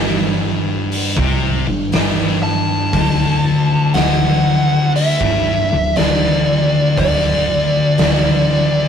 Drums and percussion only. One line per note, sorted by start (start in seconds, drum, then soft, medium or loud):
0.92 open hi-hat medium
1.17 kick loud
1.92 snare loud
1.92 open hi-hat medium
2.93 kick loud
2.93 open hi-hat medium
3.94 snare loud
3.94 open hi-hat medium
4.96 open hi-hat medium
5.21 kick medium
5.96 snare loud
5.96 open hi-hat medium
6.97 kick loud
6.97 open hi-hat soft
7.98 snare loud
7.98 open hi-hat medium